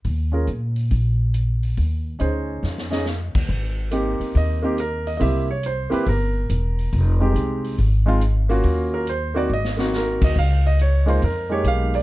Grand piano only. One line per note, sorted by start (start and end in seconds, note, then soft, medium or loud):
0.32 0.45 C#4 medium
0.32 0.46 F4 soft
0.32 0.46 G#4 soft
0.32 0.46 A#4 soft
2.19 2.85 C#4 soft
2.19 2.86 D#4 medium
2.19 2.86 G#4 soft
2.19 2.86 C5 medium
2.91 3.04 C#4 medium
2.91 3.04 D#4 medium
2.91 3.05 G#4 soft
2.91 3.05 D#5 medium
3.91 4.57 A#3 medium
3.91 4.58 C4 soft
3.91 4.58 D#4 soft
3.91 4.58 G4 medium
4.37 4.64 D#5 medium
4.62 4.76 A#3 medium
4.62 4.76 C4 medium
4.62 4.76 D#4 medium
4.62 4.77 G4 medium
4.80 5.07 A#4 medium
5.07 5.16 D#5 medium
5.17 5.46 A#3 soft
5.17 5.46 C4 soft
5.17 5.46 E4 soft
5.17 5.21 D#5 medium
5.21 5.47 G4 medium
5.21 5.49 E5 medium
5.51 5.64 C#5 medium
5.66 5.93 C5 medium
5.90 6.04 A#3 medium
5.90 6.04 C4 medium
5.90 6.04 E4 medium
5.90 6.05 G4 medium
5.90 6.07 B4 medium
6.08 7.32 A#4 medium
7.20 7.75 G#3 medium
7.20 7.75 C4 medium
7.20 7.75 D#4 medium
7.20 7.76 G4 medium
8.06 8.19 G#3 medium
8.06 8.19 C4 medium
8.06 8.20 D#4 medium
8.06 8.20 F4 medium
8.49 9.04 A#3 medium
8.49 9.04 C#4 medium
8.49 9.04 F4 medium
8.49 9.05 F#4 medium
8.94 9.07 A#4 medium
9.09 9.36 C5 medium
9.34 9.48 A#3 medium
9.34 9.48 C4 medium
9.34 9.49 D#4 medium
9.34 9.48 F#4 medium
9.34 9.50 D5 medium
9.53 9.79 D#5 medium
9.77 10.32 A#3 medium
9.77 10.32 C4 soft
9.77 10.33 D#4 soft
9.77 10.33 F#4 medium
9.96 10.22 A#4 medium
10.24 10.37 D#5 medium
10.39 10.65 F5 medium
10.67 10.79 D#5 medium
10.81 11.08 C#5 medium
11.06 11.19 G#3 medium
11.06 11.20 A#3 medium
11.06 11.20 D#4 medium
11.06 11.20 F4 medium
11.06 11.22 C5 medium
11.24 11.51 A#4 medium
11.50 12.03 G#3 medium
11.50 12.03 A#3 medium
11.50 12.03 D#4 soft
11.50 12.03 G4 medium
11.50 11.65 C#5 medium
11.68 11.94 F5 medium
11.95 12.03 D5 medium